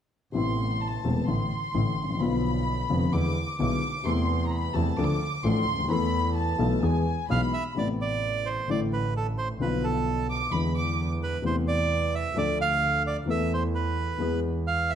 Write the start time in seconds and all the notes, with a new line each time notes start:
0.32 A1 A2 C3 A3 B3 C6
0.36 E4
0.81 A5
1.04 E1 E2 C3 A3 B3 E4
1.27 A1 A2 D3 E3 A3 E4 C6
1.74 A1 A2 D3 E3 A3 E4
1.97 A1
2.03 G#1
2.10 A1
2.15 A#1 D3
2.20 B1 B2 F3 B3 F4 B5
2.89 F1 F2 D3 F3 B3 F4
3.13 E2 D3 E3 G#3 B3 E4 D6
3.59 B1 B2 D3 G#3 B3 E4 D6
4.04 E2 C3 E3 A3 B3 C6
4.08 E4
4.46 A#5
4.52 B5
4.74 E2 C3 E3 A3 B3 E4 A5
4.98 D2 D3 F3 A3 D4 A4 D6
5.44 A1 A2 F3 A3 D4 A4 C6
5.66 D2
5.72 C#2
5.79 D2
5.84 D#2
5.88 E2 E3 A3 B3 A4 B5
6.36 A5
6.58 B1 B2 E3 A3 B3 A4
6.82 E2 E3 G#3 B3 G#4 G#5
7.28 B1 B2 E3 G#3 B3 G#4 F5 B5
7.54 E5
7.74 A1 A2 C3 A3 B3 D5
7.79 E4
8.02 D5
8.46 C5
8.68 A1 A2 D3 E3 A3 D5
8.72 E4
8.93 B4
9.17 A4
9.38 C5
9.59 B1 B2 D3 F3 B3 B4
9.63 F4
9.84 A4
10.30 D6
10.51 E2 D3 E3 G#3 B3 E4 B5
10.76 D6
11.23 B4
11.42 E2 C3 E3 A3 B3 E4 C5
11.68 D5
12.15 E5
12.34 D2 D3 F3 A3 D4 A4 D5
12.61 F5
13.07 D5
13.26 E2 E3 A3 B3
13.30 A4 E5
13.53 C5
13.75 B4
14.18 E2 E3 G#3 B3
14.22 G#4
14.67 F5
14.90 E5